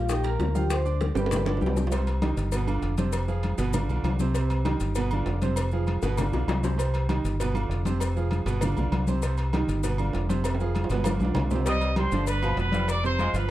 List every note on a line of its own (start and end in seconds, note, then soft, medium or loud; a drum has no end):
0.00 0.36 A#1 loud
0.09 0.22 D#4 medium
0.09 0.24 G4 medium
0.09 0.22 D#5 medium
0.09 0.25 G5 medium
0.09 0.22 D#6 medium
0.09 high bongo medium
0.09 high conga soft
0.09 maracas loud
0.23 0.49 A#3 medium
0.23 0.49 A#4 medium
0.23 0.54 A#4 medium
0.23 0.50 A#5 medium
0.23 0.54 A#5 medium
0.23 high bongo soft
0.23 high conga soft
0.23 high timbale medium
0.23 maracas soft
0.39 1.10 D2 medium
0.39 high bongo soft
0.39 low bongo medium
0.39 high conga soft
0.39 high timbale medium
0.39 low timbale medium
0.39 maracas soft
0.54 0.80 F3 medium
0.54 0.80 F4 medium
0.54 0.62 G4 medium
0.54 0.80 F5 medium
0.54 0.63 G5 medium
0.54 high bongo soft
0.54 high conga medium
0.54 maracas medium
0.70 0.99 C5 medium
0.70 0.99 C6 medium
0.70 high bongo medium
0.70 high conga soft
0.70 high timbale medium
0.70 maracas medium
0.85 1.10 D4 medium
0.85 1.10 D5 medium
0.85 1.10 D6 medium
0.85 high conga soft
0.85 maracas soft
1.01 high bongo medium
1.01 high conga medium
1.01 high timbale medium
1.01 maracas soft
1.15 1.58 G1 loud
1.15 1.40 G3 medium
1.15 1.40 G4 medium
1.15 1.73 B4 medium
1.15 1.40 G5 medium
1.15 1.73 B5 medium
1.15 high bongo soft
1.15 high conga soft
1.15 high timbale medium
1.15 maracas medium
1.26 high timbale loud
1.31 high bongo medium
1.31 high conga soft
1.31 low conga medium
1.31 maracas medium
1.36 high timbale loud
1.45 1.58 D3 medium
1.45 1.58 D4 medium
1.45 1.59 D5 medium
1.45 high bongo medium
1.45 high conga soft
1.45 low timbale medium
1.45 maracas soft
1.57 2.32 C2 loud
1.57 low timbale medium
1.61 1.86 G3 medium
1.61 1.86 G4 medium
1.61 1.87 G5 medium
1.61 high conga medium
1.61 maracas soft
1.66 low bongo medium
1.66 low timbale medium
1.76 low bongo medium
1.76 high conga medium
1.76 maracas medium
1.87 low timbale loud
1.91 2.17 C3 medium
1.91 2.17 C4 medium
1.91 2.17 C5 medium
1.91 cowbell loud
1.91 high conga soft
1.91 low agogo medium
1.91 maracas medium
2.07 cowbell medium
2.07 high conga soft
2.07 low agogo medium
2.07 maracas soft
2.22 2.47 D#3 medium
2.22 2.47 D#4 medium
2.22 2.48 G4 medium
2.22 cowbell medium
2.22 high conga loud
2.22 low agogo loud
2.22 maracas soft
2.37 2.79 G1 loud
2.37 cowbell medium
2.37 high conga soft
2.37 maracas medium
2.52 2.65 B2 medium
2.52 2.65 B3 medium
2.52 2.66 B4 medium
2.52 cowbell loud
2.52 high conga soft
2.52 low agogo loud
2.52 maracas medium
2.67 2.92 D3 medium
2.67 2.93 D4 medium
2.67 2.93 F4 medium
2.67 high conga soft
2.67 low agogo loud
2.67 maracas soft
2.82 3.53 F1 medium
2.82 cowbell medium
2.82 high conga soft
2.82 maracas soft
2.98 3.23 C3 medium
2.98 3.23 C4 medium
2.98 3.24 C5 medium
2.98 cowbell medium
2.98 high conga medium
2.98 maracas medium
3.12 cowbell loud
3.12 high conga soft
3.12 low agogo loud
3.12 maracas loud
3.28 3.53 F3 medium
3.28 3.53 F4 medium
3.28 3.53 G#4 medium
3.28 high conga soft
3.28 maracas soft
3.43 cowbell medium
3.43 high conga medium
3.43 low agogo medium
3.43 maracas soft
3.58 3.87 G1 loud
3.58 3.71 B2 loud
3.58 3.71 B3 medium
3.58 3.71 B4 medium
3.58 cowbell medium
3.58 high conga soft
3.58 low agogo medium
3.58 maracas medium
3.73 3.86 D3 medium
3.73 3.87 D4 medium
3.73 3.87 F4 medium
3.73 cowbell loud
3.73 high conga soft
3.73 low conga medium
3.73 low agogo loud
3.73 maracas loud
3.89 4.03 B1 medium
3.89 4.15 D3 medium
3.89 4.15 D4 medium
3.89 4.15 F4 medium
3.89 high conga soft
3.89 low agogo medium
3.89 maracas soft
4.03 4.75 C2 medium
4.03 cowbell medium
4.03 high conga medium
4.03 low timbale medium
4.03 low agogo loud
4.03 maracas soft
4.19 4.33 C3 medium
4.19 4.33 C4 medium
4.19 4.33 C5 medium
4.19 high conga medium
4.19 maracas medium
4.35 4.60 C3 medium
4.35 4.60 C4 medium
4.35 4.60 C5 medium
4.35 cowbell loud
4.35 high conga soft
4.35 low agogo medium
4.35 maracas medium
4.50 cowbell medium
4.50 high conga soft
4.50 low agogo loud
4.50 maracas soft
4.65 4.90 D#3 medium
4.65 4.91 D#4 medium
4.65 4.91 G4 medium
4.65 cowbell medium
4.65 high conga loud
4.65 low agogo loud
4.65 maracas soft
4.80 5.23 G1 loud
4.80 cowbell medium
4.80 high conga soft
4.80 maracas medium
4.95 5.09 B2 medium
4.95 5.09 B3 medium
4.95 5.09 B4 medium
4.95 cowbell loud
4.95 high conga soft
4.95 low agogo loud
4.95 maracas medium
5.11 5.37 D3 medium
5.11 5.37 D4 medium
5.11 5.37 F4 medium
5.11 high conga soft
5.11 low agogo loud
5.11 maracas soft
5.26 5.97 F1 loud
5.26 cowbell medium
5.26 high conga soft
5.26 low timbale medium
5.26 maracas soft
5.42 5.67 C3 medium
5.42 5.67 C4 medium
5.42 5.67 C5 medium
5.42 cowbell medium
5.42 high conga medium
5.42 maracas medium
5.56 cowbell loud
5.56 high conga soft
5.56 low agogo loud
5.56 maracas loud
5.71 5.97 F3 medium
5.71 5.97 F4 medium
5.71 5.98 G#4 medium
5.71 high conga soft
5.71 maracas soft
5.87 cowbell medium
5.87 high conga medium
5.87 low agogo medium
5.87 maracas soft
6.02 6.31 G1 loud
6.02 6.16 B2 medium
6.02 6.16 B3 medium
6.02 6.16 B4 medium
6.02 cowbell medium
6.02 high bongo medium
6.02 high conga soft
6.02 low agogo medium
6.02 maracas medium
6.17 6.31 D3 medium
6.17 6.31 D4 medium
6.17 6.31 F4 medium
6.17 cowbell loud
6.17 high bongo loud
6.17 high conga soft
6.17 low conga medium
6.17 low agogo loud
6.17 maracas medium
6.32 6.47 B1 medium
6.32 6.58 D3 medium
6.32 6.58 D4 medium
6.32 6.59 F4 medium
6.32 low bongo medium
6.32 high conga soft
6.32 low agogo loud
6.32 maracas soft
6.47 7.18 C2 medium
6.47 cowbell medium
6.47 low bongo loud
6.47 high conga medium
6.47 low timbale medium
6.47 low agogo loud
6.47 maracas soft
6.63 6.76 C3 medium
6.63 6.76 C4 medium
6.63 6.76 C5 medium
6.63 low bongo loud
6.63 high conga medium
6.63 maracas medium
6.78 7.03 C3 medium
6.78 7.03 C4 medium
6.78 7.04 C5 medium
6.78 cowbell loud
6.78 high conga soft
6.78 low agogo medium
6.78 maracas loud
6.94 cowbell medium
6.94 high conga soft
6.94 low agogo medium
6.94 maracas soft
7.09 7.34 D#3 medium
7.09 7.34 D#4 medium
7.09 7.35 G4 medium
7.09 cowbell medium
7.09 high conga loud
7.09 low agogo loud
7.09 maracas soft
7.24 7.67 G1 loud
7.24 cowbell medium
7.24 high conga soft
7.24 maracas medium
7.40 7.52 B2 medium
7.40 7.52 B3 medium
7.40 7.53 B4 medium
7.40 cowbell loud
7.40 high conga soft
7.40 low agogo medium
7.40 maracas medium
7.54 7.80 D3 medium
7.54 7.79 D4 medium
7.54 7.80 F4 medium
7.54 high conga soft
7.54 low agogo loud
7.54 maracas soft
7.69 8.40 F1 loud
7.69 cowbell medium
7.69 high conga soft
7.69 maracas soft
7.85 8.11 C3 medium
7.85 8.10 C4 medium
7.85 8.11 C5 medium
7.85 cowbell medium
7.85 high conga medium
7.85 maracas medium
8.00 cowbell loud
8.00 high conga soft
8.00 low agogo medium
8.00 maracas medium
8.16 8.41 F3 medium
8.16 8.41 F4 medium
8.16 8.41 G#4 medium
8.16 high conga soft
8.16 maracas soft
8.31 cowbell medium
8.31 high conga medium
8.31 low agogo medium
8.31 maracas soft
8.46 8.74 G1 loud
8.46 8.59 B2 medium
8.46 8.59 B3 medium
8.46 8.59 B4 medium
8.46 cowbell medium
8.46 low agogo medium
8.46 maracas medium
8.61 8.74 D3 medium
8.61 8.75 D4 medium
8.61 8.75 F4 medium
8.61 cowbell loud
8.61 high conga soft
8.61 low conga medium
8.61 low agogo loud
8.61 maracas loud
8.76 8.90 B1 medium
8.76 9.02 D3 medium
8.76 9.02 D4 medium
8.76 9.03 F4 medium
8.76 high conga soft
8.76 low conga medium
8.76 low agogo medium
8.76 maracas soft
8.92 9.62 C2 medium
8.92 cowbell medium
8.92 high conga medium
8.92 low timbale medium
8.92 low agogo loud
8.92 maracas soft
9.07 9.20 C3 medium
9.07 9.20 C4 medium
9.07 9.21 C5 medium
9.07 high conga medium
9.07 maracas medium
9.22 9.48 C3 medium
9.22 9.48 C4 medium
9.22 9.48 C5 medium
9.22 cowbell loud
9.22 low agogo medium
9.22 maracas loud
9.37 cowbell medium
9.37 high conga soft
9.37 low agogo loud
9.37 maracas soft
9.53 9.78 D#3 medium
9.53 9.79 D#4 medium
9.53 9.79 G4 medium
9.53 cowbell medium
9.53 high conga loud
9.53 low agogo loud
9.53 maracas soft
9.68 10.11 G1 loud
9.68 cowbell medium
9.68 high conga soft
9.68 maracas medium
9.83 9.96 B2 medium
9.83 9.96 B3 medium
9.83 9.96 B4 medium
9.83 cowbell loud
9.83 high conga soft
9.83 low agogo medium
9.83 maracas loud
9.98 10.24 D3 medium
9.98 10.24 D4 medium
9.98 10.24 F4 medium
9.98 high conga soft
9.98 low agogo loud
9.98 maracas soft
10.13 10.85 F1 medium
10.13 cowbell medium
10.13 high conga soft
10.13 low timbale medium
10.13 maracas soft
10.29 10.54 C3 medium
10.29 10.54 C4 medium
10.29 10.54 C5 medium
10.29 cowbell medium
10.29 high conga medium
10.29 maracas medium
10.44 cowbell loud
10.44 high timbale medium
10.44 low agogo loud
10.44 maracas medium
10.55 high timbale medium
10.60 10.85 F3 medium
10.60 10.85 F4 medium
10.60 10.85 G#4 medium
10.60 high conga soft
10.60 maracas soft
10.75 cowbell medium
10.75 high conga medium
10.75 low agogo medium
10.75 maracas soft
10.84 low timbale medium
10.90 11.18 G1 loud
10.90 11.03 B2 medium
10.90 11.03 B3 medium
10.90 11.03 B4 medium
10.90 cowbell medium
10.90 high conga soft
10.90 low agogo medium
10.90 maracas medium
10.94 low timbale medium
11.04 11.18 D3 medium
11.04 11.18 D4 medium
11.04 11.18 F4 medium
11.04 cowbell loud
11.04 high conga medium
11.04 low timbale medium
11.04 low agogo loud
11.04 maracas medium
11.19 11.35 B1 medium
11.19 11.46 D3 medium
11.19 11.46 D4 medium
11.19 11.47 F4 medium
11.19 high conga medium
11.19 low agogo medium
11.19 maracas soft
11.25 low timbale medium
11.35 12.06 C2 medium
11.35 cowbell medium
11.35 low conga loud
11.35 low timbale loud
11.35 low agogo loud
11.35 maracas soft
11.51 11.63 C3 medium
11.51 11.63 C4 medium
11.51 11.63 C5 medium
11.51 low conga medium
11.51 maracas medium
11.56 low timbale medium
11.65 11.92 C3 medium
11.65 11.90 G3 loud
11.65 11.92 C4 medium
11.65 11.92 C5 medium
11.65 11.96 D#5 loud
11.65 11.95 D#6 medium
11.65 cowbell loud
11.65 high conga soft
11.65 low agogo medium
11.65 maracas loud
11.81 cowbell medium
11.81 high conga soft
11.81 low agogo medium
11.81 maracas soft
11.96 12.10 G3 medium
11.96 12.10 G4 medium
11.96 12.26 C5 loud
11.96 12.10 G5 medium
11.96 12.26 C6 medium
11.96 cowbell medium
11.96 high conga loud
11.96 low agogo loud
11.96 maracas soft
12.12 12.54 G1 loud
12.12 12.38 D3 medium
12.12 12.28 F3 medium
12.12 12.38 D4 medium
12.12 12.38 D5 medium
12.12 cowbell medium
12.12 high conga soft
12.12 maracas medium
12.27 12.56 B4 loud
12.27 12.56 B5 medium
12.27 cowbell loud
12.27 high conga soft
12.27 low agogo loud
12.27 maracas loud
12.42 12.67 B2 medium
12.42 12.58 F3 medium
12.42 12.67 B3 medium
12.42 12.68 B4 medium
12.42 high conga soft
12.42 low agogo loud
12.42 maracas soft
12.56 13.28 F1 loud
12.56 12.87 B4 loud
12.56 12.87 B5 medium
12.56 cowbell medium
12.56 high conga soft
12.56 low timbale medium
12.56 maracas soft
12.72 12.98 F3 medium
12.72 12.96 G3 medium
12.72 12.98 F4 medium
12.72 12.99 F5 medium
12.72 cowbell medium
12.72 high conga medium
12.72 maracas medium
12.88 13.03 D5 loud
12.88 13.03 D6 medium
12.88 cowbell loud
12.88 high conga soft
12.88 low agogo loud
12.88 maracas loud
13.04 13.16 C3 loud
13.04 13.16 C4 loud
13.04 13.17 C5 medium
13.04 13.33 C5 loud
13.04 13.33 C6 medium
13.04 high conga soft
13.04 maracas soft
13.19 13.32 F3 medium
13.19 13.35 G#3 medium
13.19 13.32 F4 medium
13.19 13.32 F5 medium
13.19 cowbell medium
13.19 high conga medium
13.19 low agogo medium
13.19 maracas soft
13.34 13.51 G1 loud
13.34 13.51 F3 medium
13.34 13.51 F4 medium
13.34 13.51 B4 loud
13.34 13.51 F5 medium
13.34 13.51 B5 medium
13.34 cowbell medium
13.34 high conga soft
13.34 low agogo medium
13.34 maracas medium